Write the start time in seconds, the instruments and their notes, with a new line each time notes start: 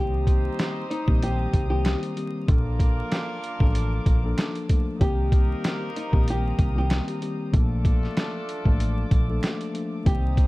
Already playing: fingered electric bass C2, tine electric piano D#3 G3 A#3 C4 G4, horn section C4 D#4 G4 C5, nylon-string guitar G4, string section C5 A#5 D#6
0.27 kick, closed hi-hat
0.59 finger snap, snare, closed hi-hat
0.90 nylon-string guitar D#4, closed hi-hat
1.07 fingered electric bass A#1, tine electric piano D#3 G3 A#3 C4 G4, kick
1.22 nylon-string guitar G4, closed hi-hat
1.53 fingered electric bass C2, kick, closed hi-hat
1.69 tine electric piano D#3 G3 A#3 C4 G4, nylon-string guitar G4
1.85 finger snap, snare, closed hi-hat
2.03 closed hi-hat
2.15 tine electric piano D#3 G3 A#3 C4 G4, closed hi-hat
2.46 fingered electric bass A#1, tine electric piano F3 A#3 D4 A4, string section A#3 A5 D6, horn section A#3 D4 F4 A#4, kick, closed hi-hat
2.80 kick, closed hi-hat
3.12 finger snap, snare, closed hi-hat
3.44 closed hi-hat
3.60 fingered electric bass A1, tine electric piano F3 A#3 D4 A4, kick
3.75 closed hi-hat
4.06 fingered electric bass A#1, kick, closed hi-hat
4.23 tine electric piano F3 A#3 D4 A4
4.38 finger snap, snare, closed hi-hat
4.55 closed hi-hat
4.68 tine electric piano F3 A3 A#3 D4 A4, kick, closed hi-hat
4.98 fingered electric bass C2, tine electric piano D#3 G3 A#3 C4 G4, horn section A#3 D#4 G4 A#4, nylon-string guitar G4, string section C5 A#5 D#6, kick, closed hi-hat
5.32 kick, closed hi-hat
5.64 finger snap, snare, closed hi-hat
5.96 nylon-string guitar D#4, closed hi-hat
6.12 fingered electric bass A#1, tine electric piano D#3 G3 A#3 C4 G4, kick
6.28 nylon-string guitar G4, closed hi-hat
6.59 fingered electric bass C2, kick, closed hi-hat
6.74 tine electric piano D#3 G3 A#3 C4 G4
6.78 nylon-string guitar G4
6.90 finger snap, snare, closed hi-hat
7.08 closed hi-hat
7.20 tine electric piano D#3 G3 A#3 C4 G4, closed hi-hat
7.52 fingered electric bass A#1, tine electric piano F3 A3 A#3 D4 A4, horn section A3 D4 F4 A4, string section A4 A5 D6, kick, closed hi-hat
7.85 kick, closed hi-hat
8.03 snare
8.17 finger snap, snare, closed hi-hat
8.49 closed hi-hat
8.65 fingered electric bass A1, tine electric piano F3 A3 A#3 D4 A4, kick
8.80 closed hi-hat
9.11 fingered electric bass A#1, kick, closed hi-hat
9.28 tine electric piano F3 A3 A#3 D4 A4
9.43 finger snap, snare, closed hi-hat
9.61 closed hi-hat
9.73 tine electric piano F3 A3 A#3 D4 A4, closed hi-hat
10.03 fingered electric bass C2, tine electric piano D#3 G3 A#3 C4 G4, horn section C4 D#4 G4 C5, nylon-string guitar G4, string section C5 A#5 D#6, kick, closed hi-hat
10.37 kick, closed hi-hat